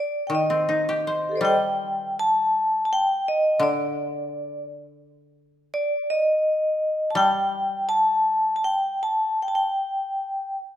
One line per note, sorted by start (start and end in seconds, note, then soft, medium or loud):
0.00 0.23 D5 medium
0.27 2.52 D#3 medium
0.27 0.33 G5 medium
0.35 1.41 D#5 medium
0.50 1.98 C4 soft
0.69 2.16 D#4 soft
0.89 2.35 G4 soft
1.07 2.53 C5 soft
1.29 1.41 G4 soft
1.29 1.44 A4 soft
1.35 1.48 C5 soft
1.35 1.50 D5 medium
1.41 3.60 G3 medium
1.41 1.55 D#5 medium
1.45 2.13 G5 medium
2.19 2.81 A5 loud
2.85 2.91 A5 medium
2.93 3.25 G5 loud
3.28 3.60 D#5 medium
3.60 5.72 D3 medium
3.60 4.63 D5 medium
5.74 6.07 D5 loud
6.10 7.08 D#5 loud
7.11 7.18 A5 medium
7.15 9.39 G3 medium
7.15 7.86 G5 loud
7.89 8.53 A5 loud
8.56 8.64 A5 medium
8.64 8.99 G5 medium
9.03 9.38 A5 medium
9.43 9.48 G5 medium
9.48 9.55 A5 medium
9.55 10.55 G5 medium